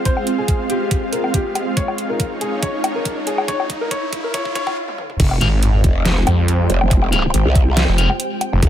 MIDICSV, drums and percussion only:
0, 0, Header, 1, 2, 480
1, 0, Start_track
1, 0, Key_signature, -4, "minor"
1, 0, Tempo, 428571
1, 60, Time_signature, 4, 2, 24, 8
1, 9736, End_track
2, 0, Start_track
2, 0, Title_t, "Drums"
2, 60, Note_on_c, 9, 42, 82
2, 61, Note_on_c, 9, 36, 100
2, 172, Note_off_c, 9, 42, 0
2, 173, Note_off_c, 9, 36, 0
2, 188, Note_on_c, 9, 77, 50
2, 300, Note_off_c, 9, 77, 0
2, 300, Note_on_c, 9, 42, 54
2, 412, Note_off_c, 9, 42, 0
2, 540, Note_on_c, 9, 42, 82
2, 541, Note_on_c, 9, 36, 97
2, 652, Note_off_c, 9, 42, 0
2, 653, Note_off_c, 9, 36, 0
2, 780, Note_on_c, 9, 42, 53
2, 892, Note_off_c, 9, 42, 0
2, 1021, Note_on_c, 9, 36, 95
2, 1021, Note_on_c, 9, 42, 83
2, 1133, Note_off_c, 9, 36, 0
2, 1133, Note_off_c, 9, 42, 0
2, 1261, Note_on_c, 9, 42, 56
2, 1373, Note_off_c, 9, 42, 0
2, 1389, Note_on_c, 9, 77, 50
2, 1501, Note_off_c, 9, 77, 0
2, 1501, Note_on_c, 9, 36, 93
2, 1501, Note_on_c, 9, 42, 85
2, 1613, Note_off_c, 9, 36, 0
2, 1613, Note_off_c, 9, 42, 0
2, 1741, Note_on_c, 9, 42, 56
2, 1741, Note_on_c, 9, 77, 51
2, 1853, Note_off_c, 9, 42, 0
2, 1853, Note_off_c, 9, 77, 0
2, 1980, Note_on_c, 9, 36, 106
2, 1981, Note_on_c, 9, 42, 81
2, 2092, Note_off_c, 9, 36, 0
2, 2093, Note_off_c, 9, 42, 0
2, 2109, Note_on_c, 9, 77, 52
2, 2221, Note_off_c, 9, 77, 0
2, 2221, Note_on_c, 9, 42, 53
2, 2333, Note_off_c, 9, 42, 0
2, 2461, Note_on_c, 9, 36, 104
2, 2461, Note_on_c, 9, 42, 84
2, 2573, Note_off_c, 9, 36, 0
2, 2573, Note_off_c, 9, 42, 0
2, 2701, Note_on_c, 9, 42, 55
2, 2813, Note_off_c, 9, 42, 0
2, 2940, Note_on_c, 9, 42, 81
2, 2941, Note_on_c, 9, 36, 108
2, 3052, Note_off_c, 9, 42, 0
2, 3053, Note_off_c, 9, 36, 0
2, 3180, Note_on_c, 9, 42, 57
2, 3180, Note_on_c, 9, 77, 75
2, 3292, Note_off_c, 9, 42, 0
2, 3292, Note_off_c, 9, 77, 0
2, 3420, Note_on_c, 9, 42, 82
2, 3421, Note_on_c, 9, 36, 103
2, 3532, Note_off_c, 9, 42, 0
2, 3533, Note_off_c, 9, 36, 0
2, 3660, Note_on_c, 9, 42, 56
2, 3772, Note_off_c, 9, 42, 0
2, 3789, Note_on_c, 9, 77, 76
2, 3901, Note_off_c, 9, 77, 0
2, 3901, Note_on_c, 9, 36, 107
2, 3901, Note_on_c, 9, 42, 80
2, 4013, Note_off_c, 9, 36, 0
2, 4013, Note_off_c, 9, 42, 0
2, 4029, Note_on_c, 9, 77, 50
2, 4141, Note_off_c, 9, 77, 0
2, 4141, Note_on_c, 9, 36, 108
2, 4141, Note_on_c, 9, 42, 54
2, 4253, Note_off_c, 9, 36, 0
2, 4253, Note_off_c, 9, 42, 0
2, 4381, Note_on_c, 9, 36, 101
2, 4381, Note_on_c, 9, 42, 82
2, 4493, Note_off_c, 9, 36, 0
2, 4493, Note_off_c, 9, 42, 0
2, 4620, Note_on_c, 9, 42, 54
2, 4621, Note_on_c, 9, 36, 106
2, 4732, Note_off_c, 9, 42, 0
2, 4733, Note_off_c, 9, 36, 0
2, 4861, Note_on_c, 9, 36, 105
2, 4861, Note_on_c, 9, 42, 77
2, 4973, Note_off_c, 9, 36, 0
2, 4973, Note_off_c, 9, 42, 0
2, 4989, Note_on_c, 9, 36, 91
2, 5101, Note_off_c, 9, 36, 0
2, 5101, Note_on_c, 9, 36, 104
2, 5101, Note_on_c, 9, 42, 53
2, 5213, Note_off_c, 9, 36, 0
2, 5213, Note_off_c, 9, 42, 0
2, 5229, Note_on_c, 9, 36, 92
2, 5229, Note_on_c, 9, 77, 54
2, 5341, Note_off_c, 9, 36, 0
2, 5341, Note_off_c, 9, 77, 0
2, 5469, Note_on_c, 9, 48, 56
2, 5581, Note_off_c, 9, 48, 0
2, 5581, Note_on_c, 9, 47, 82
2, 5693, Note_off_c, 9, 47, 0
2, 5709, Note_on_c, 9, 45, 78
2, 5821, Note_off_c, 9, 45, 0
2, 5821, Note_on_c, 9, 36, 124
2, 5821, Note_on_c, 9, 42, 84
2, 5821, Note_on_c, 9, 49, 103
2, 5933, Note_off_c, 9, 36, 0
2, 5933, Note_off_c, 9, 42, 0
2, 5933, Note_off_c, 9, 49, 0
2, 5949, Note_on_c, 9, 77, 53
2, 6061, Note_off_c, 9, 77, 0
2, 6061, Note_on_c, 9, 42, 54
2, 6173, Note_off_c, 9, 42, 0
2, 6301, Note_on_c, 9, 42, 87
2, 6413, Note_off_c, 9, 42, 0
2, 6541, Note_on_c, 9, 36, 112
2, 6541, Note_on_c, 9, 42, 55
2, 6653, Note_off_c, 9, 36, 0
2, 6653, Note_off_c, 9, 42, 0
2, 6781, Note_on_c, 9, 38, 120
2, 6781, Note_on_c, 9, 42, 83
2, 6893, Note_off_c, 9, 38, 0
2, 6893, Note_off_c, 9, 42, 0
2, 7021, Note_on_c, 9, 42, 60
2, 7021, Note_on_c, 9, 77, 83
2, 7133, Note_off_c, 9, 42, 0
2, 7133, Note_off_c, 9, 77, 0
2, 7261, Note_on_c, 9, 42, 85
2, 7373, Note_off_c, 9, 42, 0
2, 7501, Note_on_c, 9, 42, 55
2, 7613, Note_off_c, 9, 42, 0
2, 7629, Note_on_c, 9, 77, 80
2, 7741, Note_off_c, 9, 77, 0
2, 7741, Note_on_c, 9, 36, 126
2, 7741, Note_on_c, 9, 42, 85
2, 7853, Note_off_c, 9, 36, 0
2, 7853, Note_off_c, 9, 42, 0
2, 7869, Note_on_c, 9, 77, 54
2, 7981, Note_off_c, 9, 77, 0
2, 7981, Note_on_c, 9, 42, 56
2, 8093, Note_off_c, 9, 42, 0
2, 8221, Note_on_c, 9, 42, 89
2, 8333, Note_off_c, 9, 42, 0
2, 8460, Note_on_c, 9, 36, 114
2, 8461, Note_on_c, 9, 42, 56
2, 8572, Note_off_c, 9, 36, 0
2, 8573, Note_off_c, 9, 42, 0
2, 8701, Note_on_c, 9, 38, 120
2, 8701, Note_on_c, 9, 42, 81
2, 8813, Note_off_c, 9, 38, 0
2, 8813, Note_off_c, 9, 42, 0
2, 8940, Note_on_c, 9, 42, 56
2, 9052, Note_off_c, 9, 42, 0
2, 9068, Note_on_c, 9, 77, 55
2, 9180, Note_off_c, 9, 77, 0
2, 9181, Note_on_c, 9, 42, 89
2, 9293, Note_off_c, 9, 42, 0
2, 9421, Note_on_c, 9, 42, 57
2, 9421, Note_on_c, 9, 77, 52
2, 9533, Note_off_c, 9, 42, 0
2, 9533, Note_off_c, 9, 77, 0
2, 9660, Note_on_c, 9, 36, 127
2, 9660, Note_on_c, 9, 42, 83
2, 9736, Note_off_c, 9, 36, 0
2, 9736, Note_off_c, 9, 42, 0
2, 9736, End_track
0, 0, End_of_file